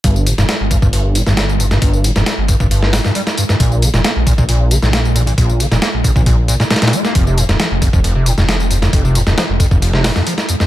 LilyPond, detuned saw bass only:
\new Staff \with { instrumentName = "Detuned saw bass" } { \clef bass \time 4/4 \key f \mixolydian \tempo 4 = 135 g,,8. f,,16 r16 g,,8 g,,4 g,,4~ g,,16 | g,,8. f,,16 r16 g,,8 g,,4 r4 r16 | bes,,8. f,,16 r16 bes,,8 bes,,4 bes,,4~ bes,,16 | bes,,8. f,,16 r16 bes,,8 bes,,4 r4 r16 |
f,,8. ees,,16 r16 f,,8 f,,4 f,,4~ f,,16 | f,,8. ees,,16 r16 f,,8 f,,4 r4 r16 | }